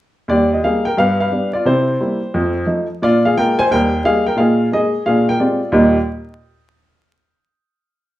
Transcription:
0.28 0.57 D#2 medium
0.28 0.48 G3 soft
0.28 0.50 G4 medium
0.28 0.48 D5 medium
0.53 0.64 G4 soft
0.53 0.62 D#5 medium
0.64 0.82 G3 soft
0.64 0.82 A#3 soft
0.64 0.82 D#4 soft
0.64 0.85 G#4 medium
0.64 0.82 F5 medium
0.85 0.97 A#4 medium
0.85 0.95 G5 medium
0.97 1.26 G2 medium
0.97 1.17 B3 soft
0.97 1.19 B4 medium
0.97 1.16 F5 medium
1.20 1.52 B4 medium
1.20 1.49 F5 medium
1.31 1.50 G3 soft
1.31 1.51 B3 soft
1.31 1.51 D4 soft
1.53 1.65 F4 medium
1.53 1.63 D5 medium
1.65 1.94 C3 medium
1.65 1.99 E4 medium
1.65 2.82 C5 medium
2.01 2.19 G3 soft
2.01 2.19 A#3 soft
2.01 2.19 E4 medium
2.34 2.63 F2 medium
2.34 2.54 A3 medium
2.66 2.85 F3 soft
2.66 2.86 A3 soft
2.66 2.85 D#4 medium
3.02 3.31 A#2 medium
3.02 3.22 D4 soft
3.02 3.23 F4 medium
3.02 3.21 D5 loud
3.25 3.36 G#4 medium
3.25 3.35 F5 medium
3.37 3.55 G#3 medium
3.37 3.55 A#3 soft
3.37 3.56 F4 medium
3.37 3.58 A#4 medium
3.37 3.55 G5 loud
3.59 3.70 C5 medium
3.59 3.68 G#5 loud
3.71 3.99 D#2 medium
3.71 3.91 G3 medium
3.71 4.03 A#4 medium
3.71 4.00 G5 loud
4.04 4.22 G3 soft
4.04 4.23 A#3 soft
4.04 4.23 D#4 medium
4.04 4.25 G#4 medium
4.04 4.23 F5 medium
4.27 4.38 A#4 medium
4.27 4.36 G5 medium
4.37 4.66 A#2 medium
4.37 4.57 D#4 soft
4.37 4.70 G#4 medium
4.37 4.66 F5 medium
4.72 4.90 G#3 soft
4.72 4.91 A#3 soft
4.72 4.91 D#4 medium
4.72 5.05 G#4 medium
4.72 5.01 D#5 medium
5.06 5.35 A#2 medium
5.06 5.26 D4 soft
5.06 5.27 G#4 medium
5.06 5.24 F5 medium
5.29 5.40 A#4 medium
5.29 5.39 G5 medium
5.39 5.58 G#3 soft
5.39 5.59 C4 soft
5.39 5.72 F4 medium
5.39 5.59 G4 soft
5.39 5.69 D5 medium
5.72 5.95 D#2 medium
5.72 5.96 A#2 medium
5.72 5.96 G3 medium
5.72 5.96 A#3 medium
5.72 5.96 D#4 medium
5.72 5.96 G4 medium
5.72 5.97 D#5 medium

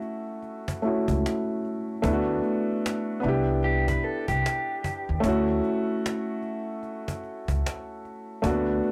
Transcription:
0.00 0.78 A3 medium
0.00 0.79 C#4 medium
0.00 0.81 E4 medium
0.00 0.82 F#4 medium
0.00 cajon slap soft
0.42 cajon slap soft
0.68 cajon bass loud
0.68 cajon slap soft
0.82 2.01 A3 medium
0.82 2.04 C#4 medium
0.82 2.04 E4 medium
0.82 2.05 F#4 medium
0.82 cajon slap soft
1.08 1.22 C#2 medium
1.08 cajon bass medium
1.26 cajon slap medium
1.65 cajon slap soft
2.02 2.39 D2 loud
2.02 3.23 A3 medium
2.02 3.19 B3 medium
2.02 3.21 D4 medium
2.02 cajon bass loud
2.06 2.13 E4 medium
2.13 3.28 F#4 medium
2.44 cajon slap soft
2.86 cajon slap loud
3.20 3.95 C2 medium
3.20 5.18 B3 medium
3.20 5.19 D4 medium
3.20 cajon slap soft
3.25 5.21 E4 medium
3.25 5.22 G4 medium
3.63 3.88 G4 medium
3.63 cajon slap soft
3.88 4.04 B4 medium
3.88 cajon bass medium
3.88 cajon slap soft
4.03 4.27 A4 medium
4.03 cajon slap soft
4.28 4.42 C2 medium
4.28 5.20 G4 medium
4.28 cajon bass medium
4.46 cajon slap loud
4.84 cajon bass medium
5.09 5.22 D#2 medium
5.20 5.59 D2 loud
5.20 8.38 A3 medium
5.20 8.39 C#4 medium
5.20 cajon bass loud
5.26 8.41 E4 medium
5.26 8.42 F#4 medium
5.64 cajon slap soft
6.06 cajon slap loud
6.42 cajon slap soft
6.83 cajon slap soft
7.08 cajon bass medium
7.08 cajon slap soft
7.23 cajon slap soft
7.48 7.62 C#2 medium
7.48 cajon bass medium
7.66 cajon slap loud
8.05 cajon slap soft
8.42 8.79 D2 loud
8.42 8.92 A3 medium
8.42 8.51 A#3 medium
8.42 8.92 D4 medium
8.42 8.92 F#4 medium
8.42 cajon bass loud
8.50 8.92 B3 medium
8.84 cajon slap soft

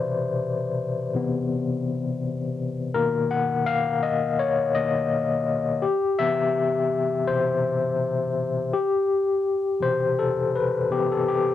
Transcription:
0.00 2.95 B2 medium
0.00 1.15 C3 soft
0.00 1.15 E3 soft
0.00 2.96 B4 medium
0.00 2.96 C5 medium
1.15 2.91 C3 medium
1.15 2.91 E3 soft
1.15 2.91 B3 medium
2.94 4.74 B2 medium
2.94 4.74 D#3 soft
2.94 4.75 A#3 medium
2.94 3.31 A#4 medium
3.31 3.68 F#5 medium
3.66 4.00 F5 loud
4.03 4.36 D#5 medium
4.39 4.76 C#5 medium
4.75 5.07 B2 soft
4.75 5.08 D#3 soft
4.75 5.08 A#3 medium
4.75 5.43 D#5 medium
5.82 6.20 G4 medium
6.19 6.69 C3 soft
6.19 6.70 E3 soft
6.19 6.70 B3 medium
6.19 6.87 E5 loud
7.27 7.61 B2 soft
7.27 7.61 C3 soft
7.27 7.61 E3 soft
7.27 8.32 C5 medium
8.73 9.77 G4 medium
9.80 10.85 B2 medium
9.80 10.85 C3 medium
9.80 10.85 E3 soft
9.80 10.19 C5 medium
10.19 10.55 A4 medium
10.55 10.88 B4 medium
10.90 11.22 C3 soft
10.90 11.22 E3 soft
10.90 11.23 B3 soft
10.90 11.12 G4 medium
11.12 11.27 A4 medium
11.28 11.55 G4 medium

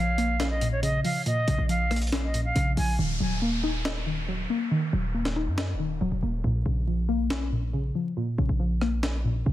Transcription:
0.00 1.00 A#1 loud
0.00 0.60 A#2 medium
0.00 0.81 C#3 medium
0.00 1.03 F3 medium
0.00 0.47 F5 medium
0.18 1.26 A#3 loud
0.18 closed hi-hat medium
0.40 1.48 C#4 medium
0.40 finger snap loud
0.40 snare loud
0.40 closed hi-hat loud
0.50 0.68 D#5 medium
0.61 1.25 A#2 medium
0.61 closed hi-hat medium
0.72 0.81 C#5 medium
0.83 1.47 C#3 loud
0.83 1.00 D#5 medium
0.83 closed hi-hat medium
1.04 1.68 F3 medium
1.04 1.22 F5 medium
1.04 open hi-hat medium
1.26 2.33 A#2 medium
1.26 1.67 D#5 loud
1.26 closed hi-hat medium
1.48 1.58 A#1 loud
1.48 2.54 C#3 medium
1.48 closed hi-hat medium
1.58 2.52 A#1 loud
1.69 2.76 F3 medium
1.69 1.99 F5 medium
1.69 closed hi-hat medium
1.91 2.99 A#3 medium
1.91 cross-stick medium
1.91 closed hi-hat medium
1.96 closed hi-hat medium
2.02 closed hi-hat medium
2.07 closed hi-hat medium
2.12 2.99 C#4 medium
2.12 finger snap loud
2.12 snare loud
2.12 closed hi-hat loud
2.23 2.41 D#5 medium
2.34 2.99 A#2 medium
2.34 closed hi-hat medium
2.45 2.75 F5 medium
2.55 2.76 A#1 loud
2.55 2.99 C#3 loud
2.55 closed hi-hat medium
2.77 2.98 A#1 loud
2.77 2.99 F3 medium
2.77 2.95 G#5 medium
2.77 open hi-hat medium
2.99 3.19 D#1 loud
2.99 4.05 D#3 medium
2.99 downlifter medium
3.20 4.46 D#1 loud
3.20 4.27 F#3 medium
3.42 4.49 A#3 medium
3.64 4.71 D#4 loud
3.85 4.93 D#5 medium
3.85 finger snap loud
3.85 snare loud
4.06 4.70 D#3 medium
4.28 4.92 F#3 medium
4.50 5.13 A#3 medium
4.71 5.78 D#3 medium
4.93 5.48 D#1 loud
4.93 6.00 F#3 medium
5.14 6.22 A#3 medium
5.25 snare medium
5.36 6.44 D#4 loud
5.47 5.75 F#2 loud
5.58 6.44 D#5 medium
5.58 finger snap loud
5.58 snare loud
5.74 6.00 D#1 medium
5.79 6.44 D#3 medium
6.01 6.11 C#1 loud
6.01 6.44 F#3 medium
6.12 6.22 D#1 loud
6.22 6.43 D#1 loud
6.22 6.44 A#3 medium
6.44 6.65 A#1 loud
6.44 7.51 A#2 medium
6.66 7.91 A#1 loud
6.66 7.72 C#3 medium
6.87 7.94 F3 medium
7.09 8.17 A#3 medium
7.30 8.38 C#4 medium
7.30 finger snap loud
7.30 snare loud
7.52 8.16 A#2 medium
7.73 8.37 C#3 medium
7.95 8.58 F3 medium
8.17 9.23 A#2 medium
8.38 8.49 A#1 loud
8.38 9.45 C#3 medium
8.49 9.42 A#1 loud
8.60 9.53 F3 medium
8.81 9.53 A#3 medium
8.81 cross-stick medium
9.03 9.53 C#4 medium
9.03 finger snap loud
9.03 snare loud
9.25 9.53 A#2 medium
9.46 9.53 A#1 loud
9.46 9.53 C#3 medium

